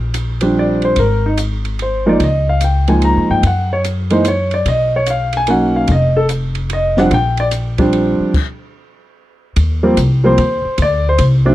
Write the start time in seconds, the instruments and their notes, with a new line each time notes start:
Already playing: upright bass A#1
0.14 hi-hat pedal, ride
0.41 grand piano F3 G3 C4 D4, ride
0.59 grand piano D5
0.82 grand piano C5, ride
0.96 upright bass G#1, grand piano A#4, kick, ride
1.26 grand piano D#4
1.37 hi-hat pedal, ride
1.65 ride
1.79 grand piano C5, ride
2.06 grand piano F3 G#3 A#3 D#4 D5
2.20 upright bass C#2, kick, ride
2.24 grand piano D#5
2.49 grand piano F5
2.61 grand piano G5, hi-hat pedal, ride
2.87 grand piano F3 G#3 A#3 D#4 G#5, ride
3.02 grand piano A#5, ride
3.16 upright bass F2
3.30 upright bass G2, grand piano G5
3.43 upright bass F#2, grand piano F#5, kick, ride
3.73 grand piano C#5
3.84 hi-hat pedal, ride
4.10 grand piano E3 G#3 A#3 D#4 C5, ride
4.25 grand piano C#5, hi-hat pedal, ride
4.51 grand piano D5, ride
4.66 upright bass B1, grand piano D#5, kick, ride
4.96 grand piano C#5
5.06 hi-hat pedal, ride
5.10 grand piano F5
5.33 ride
5.37 grand piano G#5
5.47 grand piano F#3 A#3 C#4 D#4 F#5, ride
5.76 grand piano F5
5.87 upright bass F1, kick, ride
5.92 grand piano D#5
6.17 grand piano A4
6.29 hi-hat pedal, ride
6.55 ride
6.70 grand piano D#5, ride
6.97 grand piano F3 G3 C4 D4 F#5, snare
7.11 upright bass A#1, grand piano G5, kick, ride
7.37 grand piano D5, ride
7.51 hi-hat pedal, ride
7.78 grand piano F3 G3 C4 D4, kick, ride
7.93 ride
8.20 muted upright bass stroke
8.34 kick, crash
9.56 upright bass D#2, kick, ride
9.83 grand piano F3 G3 A#3 C4
9.97 upright bass C2, kick, hi-hat pedal, ride
10.24 grand piano F3 G3 A#3 C4 C5
10.38 upright bass D#2, kick, ride
10.65 muted upright bass stroke
10.78 upright bass D2, kick, ride
10.82 grand piano D5
11.09 grand piano C5
11.18 upright bass C2, kick, ride
11.45 grand piano F#3 A3 C4 D4